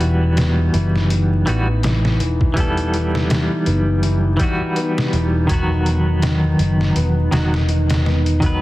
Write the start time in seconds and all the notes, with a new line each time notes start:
Already playing: E1 E3 G3 B3 D#4 F#4
0.01 E3, closed hi-hat
0.37 B3, snare, closed hi-hat
0.73 F#1 E3, closed hi-hat
0.96 snare
1.10 E3, closed hi-hat
1.46 A1 E3 G3 B3 F#4, closed hi-hat
1.83 E3, snare, closed hi-hat
2.05 snare
2.20 E1 E3, closed hi-hat
2.41 kick
2.54 E3 G3 B3, kick, closed hi-hat
2.60 A4
2.77 closed hi-hat
2.93 E3, closed hi-hat
3.15 snare
3.30 E3, snare, closed hi-hat
3.66 F#1 B3, closed hi-hat
4.03 E3, closed hi-hat
4.37 E3 G3, kick, closed hi-hat
4.41 B3 F#4
4.76 B3, closed hi-hat
4.98 snare
5.13 E1 E3, closed hi-hat
5.47 D#3 F#3, kick, closed hi-hat
5.51 B3 F#4
5.86 B3, closed hi-hat
6.22 D#3, snare, closed hi-hat
6.59 F#1 D#3, closed hi-hat
6.81 snare
6.96 E1 B3, closed hi-hat
7.31 E1 D#3 F#3 B3 F#4, snare, closed hi-hat
7.54 snare
7.69 D#3, closed hi-hat
7.90 snare, closed hi-hat
8.06 B3, snare
8.26 closed hi-hat
8.40 D#3 F#3, kick, closed hi-hat
8.44 B3 B4